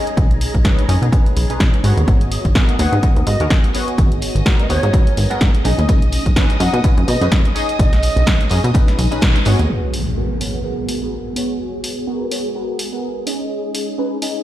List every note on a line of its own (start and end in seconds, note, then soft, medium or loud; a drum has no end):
0.00 0.62 C#4 medium
0.00 0.62 D#4 medium
0.00 0.63 G#4 medium
0.00 2.09 G#4 medium
0.00 0.63 D#5 medium
0.00 2.09 A#5 medium
0.06 closed hi-hat soft
0.06 tambourine soft
0.17 0.47 B1 medium
0.17 kick loud
0.17 closed hi-hat medium
0.17 tambourine medium
0.31 closed hi-hat soft
0.40 open hi-hat loud
0.40 tambourine medium
0.54 0.61 B1 medium
0.54 kick medium
0.54 closed hi-hat soft
0.65 0.83 C#4 medium
0.65 0.83 D#4 medium
0.65 0.84 G#4 medium
0.65 0.84 B4 medium
0.65 kick loud
0.65 snare loud
0.65 closed hi-hat medium
0.79 closed hi-hat soft
0.88 0.98 F#2 loud
0.88 1.07 C#4 medium
0.88 1.07 D#4 medium
0.88 1.08 G#4 medium
0.88 1.08 D#5 medium
0.88 open hi-hat medium
0.88 tambourine medium
1.02 1.09 B2 medium
1.02 closed hi-hat soft
1.02 tambourine soft
1.12 1.46 C#4 medium
1.12 1.47 D#4 medium
1.12 1.47 G#4 medium
1.12 1.47 B4 medium
1.12 kick loud
1.12 closed hi-hat medium
1.12 tambourine medium
1.26 closed hi-hat soft
1.36 1.45 B1 medium
1.36 open hi-hat loud
1.36 tambourine medium
1.49 1.58 B2 soft
1.49 1.82 C#4 medium
1.49 1.82 D#4 medium
1.49 1.82 G#4 medium
1.49 1.82 B4 medium
1.49 closed hi-hat soft
1.49 tambourine soft
1.60 1.69 B2 medium
1.60 kick loud
1.60 snare loud
1.60 closed hi-hat medium
1.74 closed hi-hat soft
1.84 1.93 G#2 medium
1.84 2.53 B3 medium
1.84 2.53 F#4 medium
1.84 2.53 G#4 medium
1.84 2.54 C#5 medium
1.84 open hi-hat medium
1.84 tambourine medium
1.97 2.04 D#2 medium
1.97 closed hi-hat soft
1.97 tambourine soft
2.08 2.38 G#1 loud
2.08 9.71 D#5 medium
2.08 9.71 D#6 medium
2.08 kick loud
2.08 closed hi-hat medium
2.08 tambourine soft
2.21 closed hi-hat soft
2.32 open hi-hat loud
2.32 tambourine medium
2.45 2.52 G#1 medium
2.45 kick medium
2.45 closed hi-hat soft
2.45 tambourine soft
2.55 2.74 B3 medium
2.55 2.74 F#4 medium
2.55 2.74 G#4 medium
2.55 2.74 A#4 loud
2.55 kick loud
2.55 snare loud
2.55 closed hi-hat medium
2.69 closed hi-hat soft
2.79 2.88 D#2 medium
2.79 2.98 B3 medium
2.79 2.98 F#4 medium
2.79 2.98 G#4 medium
2.79 2.98 C#5 medium
2.79 2.97 F#5 medium
2.79 open hi-hat medium
2.79 tambourine medium
2.92 2.99 G#2 loud
2.92 closed hi-hat soft
2.92 tambourine soft
3.03 3.14 D#2 soft
3.03 3.37 B3 medium
3.03 3.37 F#4 medium
3.03 3.37 G#4 medium
3.03 3.38 A#4 medium
3.03 kick loud
3.03 closed hi-hat medium
3.03 tambourine soft
3.16 3.23 D#2 loud
3.16 closed hi-hat soft
3.27 3.36 G#2 loud
3.27 3.45 D#5 medium
3.27 open hi-hat loud
3.27 tambourine medium
3.40 3.47 D#2 medium
3.40 3.72 B3 medium
3.40 3.72 F#4 medium
3.40 3.72 G#4 medium
3.40 3.73 A#4 medium
3.40 closed hi-hat soft
3.40 tambourine soft
3.50 kick loud
3.50 snare loud
3.50 closed hi-hat medium
3.64 closed hi-hat soft
3.73 4.43 B3 medium
3.73 4.43 F#4 medium
3.73 4.44 G#4 medium
3.73 4.44 C#5 loud
3.73 open hi-hat medium
3.73 tambourine medium
3.87 closed hi-hat soft
3.87 tambourine soft
3.98 4.28 G#1 loud
3.98 kick loud
3.98 closed hi-hat medium
3.98 tambourine soft
4.12 closed hi-hat soft
4.22 open hi-hat loud
4.22 tambourine loud
4.35 4.42 G#1 medium
4.35 closed hi-hat soft
4.35 tambourine soft
4.46 4.64 B3 medium
4.46 4.65 F#4 medium
4.46 4.65 G#4 medium
4.46 4.65 A#4 loud
4.46 kick loud
4.46 snare loud
4.46 closed hi-hat medium
4.59 4.68 D#5 medium
4.59 closed hi-hat soft
4.69 4.79 D#2 loud
4.69 4.88 B3 medium
4.69 4.88 F#4 medium
4.69 4.88 G#4 medium
4.69 5.37 C#5 loud
4.69 4.88 C#5 medium
4.69 open hi-hat medium
4.69 tambourine medium
4.83 4.90 G#2 loud
4.83 closed hi-hat soft
4.83 tambourine soft
4.93 5.27 B3 medium
4.93 5.27 F#4 medium
4.93 5.28 G#4 medium
4.93 5.28 A#4 medium
4.93 kick loud
4.93 closed hi-hat medium
4.93 tambourine medium
5.07 closed hi-hat soft
5.17 5.26 G#1 medium
5.17 open hi-hat medium
5.17 tambourine medium
5.30 5.39 G#2 soft
5.30 5.62 B3 medium
5.30 5.62 F#4 medium
5.30 5.63 G#4 medium
5.30 5.63 A#4 medium
5.30 closed hi-hat soft
5.30 tambourine soft
5.41 5.50 G#2 medium
5.41 kick loud
5.41 snare loud
5.41 closed hi-hat medium
5.41 tambourine medium
5.55 closed hi-hat soft
5.64 5.74 B1 loud
5.64 6.34 C#4 medium
5.64 6.34 D#4 medium
5.64 6.34 G#4 medium
5.64 6.34 D#5 medium
5.64 open hi-hat medium
5.64 tambourine medium
5.78 5.85 D#2 medium
5.78 closed hi-hat soft
5.78 tambourine soft
5.88 6.19 B1 loud
5.88 kick loud
5.88 closed hi-hat medium
5.88 tambourine medium
6.02 closed hi-hat soft
6.12 open hi-hat loud
6.12 tambourine medium
6.26 6.33 B1 medium
6.26 kick medium
6.26 closed hi-hat soft
6.26 tambourine soft
6.36 6.55 C#4 medium
6.36 6.55 D#4 medium
6.36 6.55 G#4 medium
6.36 6.55 B4 loud
6.36 kick loud
6.36 snare loud
6.36 closed hi-hat medium
6.36 tambourine soft
6.50 closed hi-hat soft
6.60 6.69 F#2 loud
6.60 6.79 C#4 medium
6.60 6.79 D#4 medium
6.60 6.79 G#4 medium
6.60 6.79 D#5 medium
6.60 6.78 F#5 medium
6.60 open hi-hat medium
6.60 tambourine medium
6.73 6.80 B2 loud
6.73 closed hi-hat soft
6.73 tambourine soft
6.84 6.95 F#2 soft
6.84 7.18 C#4 medium
6.84 7.18 D#4 medium
6.84 7.18 G#4 medium
6.84 7.18 B4 medium
6.84 kick loud
6.84 closed hi-hat loud
6.84 tambourine soft
6.97 7.04 F#2 loud
6.97 closed hi-hat soft
7.08 7.17 B2 loud
7.08 7.26 D#5 medium
7.08 open hi-hat loud
7.08 tambourine medium
7.21 7.28 F#2 medium
7.21 7.53 C#4 medium
7.21 7.53 D#4 medium
7.21 7.53 G#4 medium
7.21 7.53 B4 medium
7.21 closed hi-hat soft
7.21 tambourine soft
7.32 kick loud
7.32 snare loud
7.32 closed hi-hat medium
7.32 tambourine medium
7.45 closed hi-hat soft
7.55 8.24 C#4 medium
7.55 8.24 D#4 medium
7.55 8.25 G#4 medium
7.55 8.25 D#5 loud
7.55 open hi-hat medium
7.55 tambourine medium
7.69 closed hi-hat soft
7.69 tambourine soft
7.79 8.09 B1 loud
7.79 8.47 D#5 loud
7.79 kick loud
7.79 closed hi-hat medium
7.79 tambourine medium
7.93 snare soft
7.93 closed hi-hat soft
7.93 tambourine soft
8.03 open hi-hat loud
8.03 tambourine medium
8.17 8.23 B1 medium
8.17 closed hi-hat soft
8.17 tambourine soft
8.26 8.45 C#4 medium
8.26 8.45 D#4 medium
8.26 8.45 G#4 medium
8.26 8.46 B4 medium
8.26 kick loud
8.26 snare loud
8.26 closed hi-hat loud
8.26 tambourine medium
8.40 closed hi-hat soft
8.40 tambourine soft
8.49 8.60 F#2 loud
8.49 8.69 C#4 medium
8.49 8.69 D#4 medium
8.49 8.69 G#4 medium
8.49 8.69 D#5 loud
8.49 open hi-hat medium
8.49 tambourine medium
8.64 8.71 B2 loud
8.64 closed hi-hat soft
8.64 tambourine soft
8.74 9.08 C#4 medium
8.74 9.09 D#4 medium
8.74 9.09 G#4 medium
8.74 9.09 B4 medium
8.74 kick loud
8.74 closed hi-hat loud
8.74 tambourine soft
8.88 snare soft
8.88 closed hi-hat soft
8.98 9.07 B1 medium
8.98 open hi-hat medium
8.98 tambourine medium
9.11 9.20 B2 soft
9.11 9.43 C#4 medium
9.11 9.43 D#4 medium
9.11 9.43 G#4 medium
9.11 9.44 B4 medium
9.11 closed hi-hat soft
9.11 tambourine soft
9.21 9.31 B2 medium
9.21 kick loud
9.21 snare loud
9.21 closed hi-hat loud
9.21 tambourine medium
9.36 closed hi-hat soft
9.36 tambourine soft
9.45 9.55 G#2 loud
9.45 9.93 B3 medium
9.45 9.94 F#4 medium
9.45 9.94 G#4 medium
9.45 9.94 C#5 loud
9.45 open hi-hat medium
9.45 tambourine medium
9.59 9.66 D#2 medium
9.59 closed hi-hat soft
9.59 tambourine soft
9.69 14.43 G#4 medium
9.69 14.43 G#5 medium
9.69 tambourine soft
9.69 impact medium
9.94 open hi-hat medium
10.17 10.36 B3 medium
10.17 10.36 F#4 medium
10.17 10.36 G#4 medium
10.17 10.36 A#4 medium
10.40 10.59 B3 medium
10.40 10.59 F#4 medium
10.40 10.60 G#4 medium
10.40 10.60 C#5 medium
10.40 open hi-hat medium
10.64 10.99 B3 medium
10.64 10.99 F#4 medium
10.64 10.99 G#4 medium
10.64 10.99 A#4 medium
10.89 open hi-hat medium
11.02 11.34 B3 medium
11.02 11.34 F#4 medium
11.02 11.34 G#4 medium
11.02 11.34 A#4 medium
11.36 12.05 B3 medium
11.36 12.05 F#4 medium
11.36 12.06 G#4 medium
11.36 12.06 C#5 medium
11.36 open hi-hat medium
11.84 open hi-hat loud
12.07 12.26 B3 medium
12.07 12.26 F#4 medium
12.07 12.26 G#4 medium
12.07 12.26 A#4 medium
12.31 12.50 B3 medium
12.31 12.50 F#4 medium
12.31 12.50 G#4 medium
12.31 12.50 C#5 medium
12.31 open hi-hat medium
12.55 12.89 B3 medium
12.55 12.89 F#4 medium
12.55 12.90 G#4 medium
12.55 12.90 A#4 medium
12.79 open hi-hat loud
12.92 13.24 B3 medium
12.92 13.24 F#4 medium
12.92 13.24 G#4 medium
12.92 13.25 A#4 medium
13.03 tambourine soft
13.26 13.96 C#4 medium
13.26 13.96 D#4 medium
13.26 13.96 G#4 medium
13.26 13.96 D#5 medium
13.26 open hi-hat medium
13.50 tambourine soft
13.75 open hi-hat loud
13.98 14.17 C#4 medium
13.98 14.17 D#4 medium
13.98 14.17 G#4 medium
13.98 14.17 B4 loud
14.22 14.41 C#4 medium
14.22 14.41 D#4 medium
14.22 14.41 G#4 medium
14.22 14.41 D#5 loud
14.22 open hi-hat medium